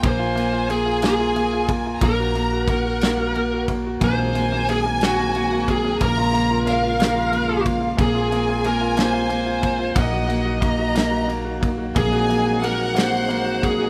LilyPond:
<<
  \new Staff \with { instrumentName = "Violin section" } { \time 6/8 \key aes \mixolydian \tempo 4. = 60 aes''2. | bes''4 ges''4. r8 | aes''2. | bes''4 f''2 |
aes''2. | ges''4 bes''4. r8 | aes''4 ges''2 | }
  \new Staff \with { instrumentName = "Lead electric guitar" } { \time 6/8 \key aes \mixolydian c''4 aes'8 aes'4 r8 | bes'2~ bes'8 r8 | c''4 aes'8 ges'4 aes'8 | bes'2~ bes'8 r8 |
aes'4 bes'8 c''4. | ees''2 r4 | aes'4 bes'8 c''4 aes'8 | }
  \new Staff \with { instrumentName = "Grand piano" } { \time 6/8 \key aes \mixolydian bes16 f'16 bes16 f'16 bes16 f'16 bes16 f'16 bes16 f'16 bes16 f'16 | bes16 ges'16 bes16 ges'16 bes16 ges'16 bes16 ges'16 bes16 ges'16 bes16 ges'16 | bes16 bes16 bes16 bes16 bes16 bes16 ges'16 bes16 bes16 bes16 bes16 bes16 | bes16 f'16 bes16 f'16 bes16 f'16 bes16 f'16 bes16 f'16 bes16 f'16 |
bes16 f'16 bes16 f'16 bes16 f'16 bes16 f'16 bes16 f'16 bes16 f'16 | bes16 ges'16 bes16 ges'16 bes16 ges'16 bes16 ges'16 bes16 ges'16 bes16 ges'16 | bes16 ges'16 bes16 ges'16 bes16 ges'16 bes16 ges'16 bes16 ges'16 bes16 ges'16 | }
  \new Staff \with { instrumentName = "Tonewheel organ" } { \time 6/8 \key aes \mixolydian r2. | r2. | ges'2. | f'2.~ |
f'2. | ees'2. | aes'2. | }
  \new Staff \with { instrumentName = "Tonewheel organ" } { \clef bass \time 6/8 \key aes \mixolydian << { r2. | r2. | <ees ges c'>2. | <des f bes>2. |
c'2. | bes2. | aes2. | } \\ { r2. | r2. | aes2.~ | aes2.~ |
aes2. | ges2. | c'2. | } >> }
  \new Staff \with { instrumentName = "Upright bass" } { \clef bass \time 6/8 \key aes \mixolydian bes,,2. | bes,,2. | bes,,2. | bes,,2. |
bes,,2. | bes,,2. | bes,,2. | }
  \new DrumStaff \with { instrumentName = "Drums" } \drummode { \time 6/8 <bd cymr>8 cymr8 cymr8 <cymr sn>8 cymr8 <bd cymr>8 | <bd cymr>8 cymr8 <bd cymr>8 <cymr sn>8 cymr8 <bd cymr>8 | <bd cymr>8 cymr8 cymr8 <cymr sn>8 cymr8 <bd cymr>8 | <bd cymr>8 cymr8 cymr8 <cymr sn>8 cymr8 <bd cymr>8 |
<bd cymr>8 cymr8 cymr8 <cymr sn>8 cymr8 <bd cymr>8 | <bd cymr>8 cymr8 <bd cymr>8 <cymr sn>8 cymr8 <bd cymr>8 | <bd cymr>8 cymr8 cymr8 <cymr sn>8 cymr8 <bd cymr>8 | }
>>